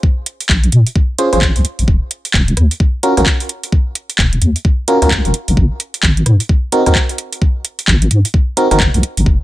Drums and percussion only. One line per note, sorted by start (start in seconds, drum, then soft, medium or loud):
0.03 kick loud
0.26 closed hi-hat loud
0.40 closed hi-hat medium
0.49 kick loud
0.49 clap loud
0.64 closed hi-hat medium
0.72 closed hi-hat loud
0.87 closed hi-hat medium
0.96 kick loud
1.18 closed hi-hat loud
1.33 cross-stick medium
1.33 closed hi-hat medium
1.42 kick loud
1.42 clap loud
1.56 closed hi-hat soft
1.65 closed hi-hat loud
1.79 closed hi-hat medium
1.88 kick loud
2.11 closed hi-hat loud
2.25 closed hi-hat medium
2.34 kick loud
2.34 clap loud
2.48 closed hi-hat medium
2.57 cross-stick medium
2.57 closed hi-hat loud
2.71 closed hi-hat medium
2.80 kick loud
3.03 closed hi-hat medium
3.17 cross-stick medium
3.17 closed hi-hat medium
3.26 kick loud
3.26 clap loud
3.40 closed hi-hat soft
3.49 closed hi-hat loud
3.63 closed hi-hat medium
3.72 kick loud
3.95 closed hi-hat loud
4.10 closed hi-hat medium
4.18 kick loud
4.18 clap loud
4.33 closed hi-hat medium
4.42 closed hi-hat medium
4.56 closed hi-hat medium
4.65 kick loud
4.88 closed hi-hat loud
5.02 cross-stick soft
5.02 closed hi-hat medium
5.11 kick loud
5.11 clap loud
5.25 closed hi-hat soft
5.34 closed hi-hat loud
5.48 closed hi-hat medium
5.57 kick loud
5.80 closed hi-hat medium
5.94 closed hi-hat medium
6.03 kick loud
6.03 clap loud
6.17 closed hi-hat medium
6.26 cross-stick medium
6.26 closed hi-hat loud
6.40 closed hi-hat medium
6.49 kick loud
6.72 closed hi-hat medium
6.86 cross-stick soft
6.86 closed hi-hat medium
6.95 kick loud
6.95 clap loud
7.09 closed hi-hat medium
7.18 closed hi-hat loud
7.33 closed hi-hat medium
7.42 kick loud
7.65 closed hi-hat loud
7.79 closed hi-hat medium
7.88 kick loud
7.88 clap loud
8.02 closed hi-hat medium
8.11 closed hi-hat loud
8.25 closed hi-hat medium
8.34 kick loud
8.57 closed hi-hat loud
8.71 cross-stick soft
8.71 closed hi-hat medium
8.80 kick loud
8.80 clap loud
8.94 closed hi-hat medium
9.03 closed hi-hat loud
9.17 closed hi-hat medium
9.26 kick loud